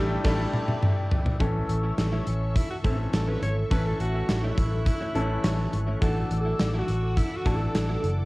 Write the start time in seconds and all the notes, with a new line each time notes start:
Already playing: A1 G3 A3 D4 E4 G4 A4 E5 G5 D6
0.24 A1 G3 A3 D4 E4 G4 A4, kick, snare, crash
0.54 high tom
0.68 high tom
0.83 mid tom
1.11 floor tom
1.26 floor tom
1.40 A1 E3 A3 C#4 E4 A4 E5 C#6 E6, kick, closed hi-hat
1.54 muted clean electric guitar stroke
1.69 A1, muted clean electric guitar stroke, closed hi-hat
1.83 A3 C#4 E4
1.97 A1, muted clean electric guitar stroke, snare, closed hi-hat
2.12 A3 C#4 E4
2.27 A1 C#4, muted clean electric guitar stroke, closed hi-hat
2.41 muted clean electric guitar stroke
2.56 E4, kick, closed hi-hat
2.70 F#4, muted clean electric guitar stroke
2.84 A1 E3 A3 C4 C#4 E4 A4, kick, closed hi-hat
2.91 C#4
2.99 muted clean electric guitar stroke
3.13 A1 A4, muted clean electric guitar stroke, snare, closed hi-hat
3.27 A3 C#4 E4 B4
3.42 G#1 C#5, muted clean electric guitar stroke, closed hi-hat
3.57 muted clean electric guitar stroke
3.70 A1 E3 A3 C#4 E4 A4 B4 F#6, kick, closed hi-hat
3.86 A4, muted clean electric guitar stroke
4.00 A1 F#4, muted clean electric guitar stroke, closed hi-hat
4.14 A3 C#4 E4
4.29 A1, muted clean electric guitar stroke, snare, closed hi-hat
4.43 A3 C#4 E4
4.58 A1, muted clean electric guitar stroke, kick, closed hi-hat
4.72 muted clean electric guitar stroke
4.86 muted clean electric guitar stroke, kick, closed hi-hat
5.01 A3 C#4 E4
5.15 A1 E3 A3 C#4 A4 C#5, muted clean electric guitar stroke, closed hi-hat
5.29 muted clean electric guitar stroke
5.43 A1 A3 C#4 E4 C#6, snare, closed hi-hat
5.58 muted clean electric guitar stroke
5.72 G#1, muted clean electric guitar stroke, closed hi-hat
5.87 A3 C#4 E4
6.01 A1 E3 F#3 A3 D4 E4 F#4 A4 F#5 D6 E6, kick, closed hi-hat
6.16 muted clean electric guitar stroke
6.30 A1, muted clean electric guitar stroke, closed hi-hat
6.41 A4
6.45 F#3 A3 E4
6.59 A1, snare, closed hi-hat
6.74 F#3 A3 E4
6.79 F#4
6.88 A1, muted clean electric guitar stroke, closed hi-hat
7.03 muted clean electric guitar stroke
7.17 E4, kick, closed hi-hat
7.32 muted clean electric guitar stroke
7.37 F#4
7.45 A1 E3 F#3 A3 D4 E4 A4, kick, closed hi-hat
7.56 A4
7.60 muted clean electric guitar stroke
7.75 A1, muted clean electric guitar stroke, snare, closed hi-hat
7.89 F#3 A3 E4
8.03 F#1, muted clean electric guitar stroke, closed hi-hat
8.18 muted clean electric guitar stroke